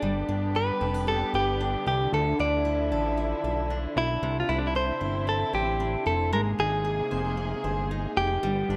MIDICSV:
0, 0, Header, 1, 5, 480
1, 0, Start_track
1, 0, Tempo, 525394
1, 19, Time_signature, 4, 2, 24, 8
1, 8009, End_track
2, 0, Start_track
2, 0, Title_t, "Clean electric guitar"
2, 0, Program_c, 0, 27
2, 0, Note_on_c, 0, 62, 91
2, 513, Note_on_c, 0, 71, 97
2, 528, Note_off_c, 0, 62, 0
2, 984, Note_off_c, 0, 71, 0
2, 988, Note_on_c, 0, 69, 110
2, 1231, Note_off_c, 0, 69, 0
2, 1234, Note_on_c, 0, 67, 104
2, 1703, Note_off_c, 0, 67, 0
2, 1714, Note_on_c, 0, 67, 104
2, 1951, Note_off_c, 0, 67, 0
2, 1955, Note_on_c, 0, 69, 98
2, 2192, Note_off_c, 0, 69, 0
2, 2196, Note_on_c, 0, 74, 105
2, 3592, Note_off_c, 0, 74, 0
2, 3634, Note_on_c, 0, 64, 97
2, 3989, Note_off_c, 0, 64, 0
2, 4019, Note_on_c, 0, 65, 84
2, 4097, Note_off_c, 0, 65, 0
2, 4101, Note_on_c, 0, 64, 88
2, 4180, Note_off_c, 0, 64, 0
2, 4189, Note_on_c, 0, 62, 74
2, 4265, Note_off_c, 0, 62, 0
2, 4266, Note_on_c, 0, 64, 82
2, 4345, Note_off_c, 0, 64, 0
2, 4350, Note_on_c, 0, 72, 99
2, 4827, Note_off_c, 0, 72, 0
2, 4831, Note_on_c, 0, 69, 99
2, 5064, Note_off_c, 0, 69, 0
2, 5067, Note_on_c, 0, 67, 97
2, 5539, Note_off_c, 0, 67, 0
2, 5543, Note_on_c, 0, 69, 94
2, 5782, Note_off_c, 0, 69, 0
2, 5786, Note_on_c, 0, 70, 97
2, 5850, Note_off_c, 0, 70, 0
2, 6028, Note_on_c, 0, 68, 92
2, 7462, Note_off_c, 0, 68, 0
2, 7466, Note_on_c, 0, 67, 103
2, 8009, Note_off_c, 0, 67, 0
2, 8009, End_track
3, 0, Start_track
3, 0, Title_t, "Steel-string acoustic guitar"
3, 0, Program_c, 1, 25
3, 21, Note_on_c, 1, 55, 90
3, 261, Note_on_c, 1, 62, 63
3, 502, Note_on_c, 1, 67, 62
3, 739, Note_on_c, 1, 69, 60
3, 861, Note_off_c, 1, 69, 0
3, 861, Note_on_c, 1, 71, 53
3, 968, Note_off_c, 1, 67, 0
3, 979, Note_on_c, 1, 67, 66
3, 1213, Note_off_c, 1, 71, 0
3, 1224, Note_on_c, 1, 71, 68
3, 1463, Note_off_c, 1, 62, 0
3, 1467, Note_on_c, 1, 62, 66
3, 1692, Note_off_c, 1, 67, 0
3, 1703, Note_on_c, 1, 67, 59
3, 1942, Note_off_c, 1, 55, 0
3, 1951, Note_on_c, 1, 50, 80
3, 1990, Note_off_c, 1, 67, 0
3, 1991, Note_off_c, 1, 71, 0
3, 2183, Note_off_c, 1, 62, 0
3, 2187, Note_on_c, 1, 62, 64
3, 2420, Note_on_c, 1, 64, 63
3, 2664, Note_on_c, 1, 69, 62
3, 2896, Note_off_c, 1, 64, 0
3, 2899, Note_on_c, 1, 64, 64
3, 3134, Note_off_c, 1, 69, 0
3, 3145, Note_on_c, 1, 69, 64
3, 3379, Note_off_c, 1, 62, 0
3, 3383, Note_on_c, 1, 62, 64
3, 3624, Note_off_c, 1, 64, 0
3, 3628, Note_on_c, 1, 64, 65
3, 3859, Note_off_c, 1, 50, 0
3, 3862, Note_on_c, 1, 48, 85
3, 3911, Note_off_c, 1, 69, 0
3, 4097, Note_off_c, 1, 62, 0
3, 4101, Note_on_c, 1, 62, 68
3, 4129, Note_off_c, 1, 64, 0
3, 4340, Note_on_c, 1, 64, 63
3, 4575, Note_on_c, 1, 72, 68
3, 4804, Note_off_c, 1, 64, 0
3, 4815, Note_on_c, 1, 64, 66
3, 5051, Note_off_c, 1, 72, 0
3, 5054, Note_on_c, 1, 72, 64
3, 5287, Note_off_c, 1, 62, 0
3, 5298, Note_on_c, 1, 62, 62
3, 5523, Note_off_c, 1, 64, 0
3, 5534, Note_on_c, 1, 64, 64
3, 5779, Note_on_c, 1, 56, 89
3, 5781, Note_off_c, 1, 48, 0
3, 5825, Note_off_c, 1, 64, 0
3, 5827, Note_off_c, 1, 62, 0
3, 6017, Note_on_c, 1, 63, 61
3, 6254, Note_on_c, 1, 68, 62
3, 6492, Note_off_c, 1, 72, 0
3, 6496, Note_on_c, 1, 72, 67
3, 6724, Note_off_c, 1, 68, 0
3, 6735, Note_on_c, 1, 68, 61
3, 6969, Note_off_c, 1, 72, 0
3, 6980, Note_on_c, 1, 72, 65
3, 7216, Note_off_c, 1, 63, 0
3, 7227, Note_on_c, 1, 63, 68
3, 7457, Note_off_c, 1, 68, 0
3, 7698, Note_off_c, 1, 56, 0
3, 7701, Note_on_c, 1, 55, 95
3, 7748, Note_off_c, 1, 72, 0
3, 7751, Note_off_c, 1, 63, 0
3, 7949, Note_on_c, 1, 62, 69
3, 8009, Note_off_c, 1, 55, 0
3, 8009, Note_off_c, 1, 62, 0
3, 8009, End_track
4, 0, Start_track
4, 0, Title_t, "String section"
4, 0, Program_c, 2, 48
4, 15, Note_on_c, 2, 67, 91
4, 16, Note_on_c, 2, 59, 81
4, 18, Note_on_c, 2, 50, 88
4, 1920, Note_off_c, 2, 59, 0
4, 1920, Note_off_c, 2, 67, 0
4, 1950, Note_on_c, 2, 64, 93
4, 1953, Note_on_c, 2, 53, 72
4, 3847, Note_off_c, 2, 64, 0
4, 3848, Note_off_c, 2, 53, 0
4, 3866, Note_on_c, 2, 60, 77
4, 3866, Note_on_c, 2, 64, 94
4, 5744, Note_off_c, 2, 50, 0
4, 5764, Note_off_c, 2, 60, 0
4, 5764, Note_off_c, 2, 64, 0
4, 5783, Note_on_c, 2, 68, 93
4, 5785, Note_on_c, 2, 58, 80
4, 5786, Note_on_c, 2, 48, 88
4, 7681, Note_off_c, 2, 68, 0
4, 7682, Note_off_c, 2, 58, 0
4, 7683, Note_off_c, 2, 48, 0
4, 7704, Note_on_c, 2, 67, 98
4, 7705, Note_on_c, 2, 50, 92
4, 7707, Note_on_c, 2, 59, 81
4, 8009, Note_off_c, 2, 50, 0
4, 8009, Note_off_c, 2, 59, 0
4, 8009, Note_off_c, 2, 67, 0
4, 8009, End_track
5, 0, Start_track
5, 0, Title_t, "Analog synth bass"
5, 0, Program_c, 3, 38
5, 22, Note_on_c, 3, 31, 104
5, 218, Note_off_c, 3, 31, 0
5, 261, Note_on_c, 3, 31, 89
5, 655, Note_off_c, 3, 31, 0
5, 741, Note_on_c, 3, 29, 105
5, 1135, Note_off_c, 3, 29, 0
5, 1220, Note_on_c, 3, 31, 99
5, 1615, Note_off_c, 3, 31, 0
5, 1701, Note_on_c, 3, 36, 108
5, 1898, Note_off_c, 3, 36, 0
5, 1941, Note_on_c, 3, 38, 117
5, 2138, Note_off_c, 3, 38, 0
5, 2186, Note_on_c, 3, 38, 88
5, 2663, Note_on_c, 3, 33, 98
5, 2677, Note_off_c, 3, 38, 0
5, 3056, Note_off_c, 3, 33, 0
5, 3142, Note_on_c, 3, 35, 95
5, 3536, Note_off_c, 3, 35, 0
5, 3620, Note_on_c, 3, 35, 95
5, 3817, Note_off_c, 3, 35, 0
5, 3858, Note_on_c, 3, 36, 99
5, 4056, Note_off_c, 3, 36, 0
5, 4101, Note_on_c, 3, 36, 98
5, 4494, Note_off_c, 3, 36, 0
5, 4580, Note_on_c, 3, 31, 91
5, 4974, Note_off_c, 3, 31, 0
5, 5056, Note_on_c, 3, 33, 102
5, 5451, Note_off_c, 3, 33, 0
5, 5541, Note_on_c, 3, 29, 104
5, 5784, Note_on_c, 3, 32, 107
5, 5798, Note_off_c, 3, 29, 0
5, 5979, Note_off_c, 3, 32, 0
5, 6023, Note_on_c, 3, 32, 106
5, 6415, Note_off_c, 3, 32, 0
5, 6506, Note_on_c, 3, 29, 94
5, 6897, Note_off_c, 3, 29, 0
5, 6981, Note_on_c, 3, 31, 97
5, 7374, Note_off_c, 3, 31, 0
5, 7465, Note_on_c, 3, 29, 100
5, 7659, Note_off_c, 3, 29, 0
5, 7703, Note_on_c, 3, 31, 96
5, 7898, Note_off_c, 3, 31, 0
5, 7941, Note_on_c, 3, 31, 104
5, 8009, Note_off_c, 3, 31, 0
5, 8009, End_track
0, 0, End_of_file